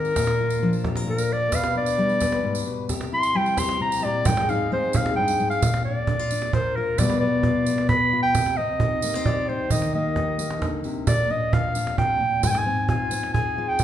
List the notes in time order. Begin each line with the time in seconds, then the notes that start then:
Already playing: G#2 D#3 G#3 C4 D#4 A#4
0.05 tambourine
0.16 A#2 F4, cajon bass, cajon slap, tambourine
0.27 cajon slap, tambourine
0.41 F4
0.50 tambourine
0.62 F3 D4
0.73 tambourine
0.84 G4, cajon bass, cajon slap
0.96 A#4, cajon slap
1.07 A#2 A#4
1.18 cajon slap, tambourine
1.32 D5
1.52 B2 B4 F5, cajon bass, cajon slap, tambourine
1.63 cajon slap, tambourine
1.75 D4 D5
1.86 tambourine
1.98 G3 B3
2.09 tambourine
2.20 B4, cajon bass, cajon slap, tambourine
2.32 cajon slap
2.43 G#2
2.55 cajon slap, tambourine
2.66 B2
2.89 C3 G4, cajon bass, cajon slap, tambourine
3.01 cajon slap, tambourine
3.13 E4 C6
3.23 tambourine
3.35 G3 C4 G5
3.46 tambourine
3.57 G4 C6, cajon bass, cajon slap, tambourine
3.69 cajon slap
3.81 C3 A#5
3.91 cajon slap, tambourine
4.04 A#2 D5
4.25 G#2 G#3 C4 D#4 G5, cajon bass, tambourine
4.30 G#4
4.37 cajon slap
4.49 D#4 F5, tambourine
4.60 cajon slap
4.72 G#3 C4 C5
4.83 cajon slap
4.93 G#4 F5, cajon bass, tambourine
5.06 cajon slap
5.16 G2 G5
5.28 cajon slap, tambourine
5.40 G#2, tambourine
5.50 F5, tambourine
5.62 A#2, cajon bass, tambourine
5.74 cajon slap
5.85 D4 D5
6.07 D4, cajon bass
6.19 F4, cajon slap
6.31 D4, tambourine
6.42 cajon slap
6.53 A#4 C5, cajon bass
6.76 F4 A#4
6.87 cajon slap
6.98 B2 G3 B3 F4 B4 D5, cajon bass, tambourine
7.10 cajon slap
7.20 B3 D5
7.43 F4, cajon bass
7.55 cajon slap
7.67 B3, tambourine
7.78 cajon slap
7.89 B4 B5, cajon bass
8.13 F4
8.23 G5, cajon slap
8.35 C3, cajon bass, tambourine
8.46 cajon slap
8.57 C4 D#5
8.80 D#4, cajon bass
8.91 cajon slap
9.02 A#3, tambourine
9.14 C4, cajon slap
9.25 G4 D5, cajon bass
9.48 D#4 C5
9.59 cajon slap
9.70 D#3 D#5, cajon bass, tambourine
9.82 cajon slap
9.94 A#3 D#5, cajon slap
10.04 cajon slap
10.16 D#4, cajon bass, cajon slap
10.39 A#3, tambourine
10.50 cajon slap
10.62 D3, cajon bass, cajon slap, tambourine
10.84 C3, cajon slap, tambourine
11.07 A#2 D5, cajon bass, tambourine
11.30 D4 D#5
11.53 F4 F5, cajon bass
11.65 cajon slap
11.75 D4, tambourine
11.87 cajon slap
11.98 C3 G5, cajon bass
12.20 A#2
12.32 cajon slap
12.43 G#2 G#5, cajon bass, tambourine
12.51 G5
12.55 G#5, cajon slap
12.66 C4
12.89 F4 G#5, cajon bass
13.00 cajon slap
13.11 C4, tambourine
13.23 cajon slap
13.34 G#4 G#5, cajon bass
13.58 F4
13.68 G5, cajon slap
13.79 C3, cajon bass, tambourine